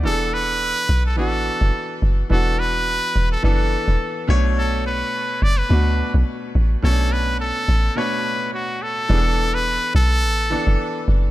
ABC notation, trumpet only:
X:1
M:4/4
L:1/16
Q:"Swing 16ths" 1/4=106
K:Edor
V:1 name="Trumpet"
A2 B4- B A A6 z2 | A2 B4- B A A6 z2 | A2 B4 d B4 z4 z | A2 B2 A4 B4 F2 A2- |
A3 B3 A8 z2 |]